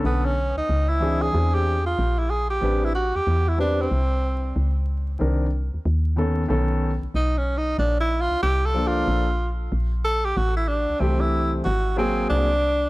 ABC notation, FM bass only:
X:1
M:4/4
L:1/16
Q:"Swing 16ths" 1/4=93
K:Ador
V:1 name="FM bass" clef=bass
B,,,3 ^C,, C,,4 E,,4 _B,,,4 | A,,,3 E,, E,,4 C,,4 ^C,,4 | C,,3 _E,, E,,4 B,,,3 B,,, B,,,4 | _B,,,3 C,, C,,4 B,,,4 B,,,4 |
A,,,3 C,, C,,4 _A,,,4 C,,4 |]